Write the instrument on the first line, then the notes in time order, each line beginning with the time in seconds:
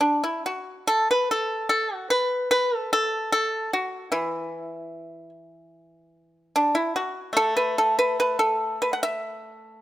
pipa
0.01 D4
0.24 E4
0.46 F#4
0.87 A4
1.11 B4
1.31 A4
1.69 A4
1.95 F#4
2.10 B4
2.51 B4
2.76 A4
2.93 A4
3.32 A4
3.73 F#4
4.12 E3 E4
6.56 D4
6.75 E4
6.96 F#4
7.33 A3 A4
7.57 B4
7.78 A4
7.99 B4
8.20 B4
8.39 A4
8.82 B4
8.93 F#5
9.03 E5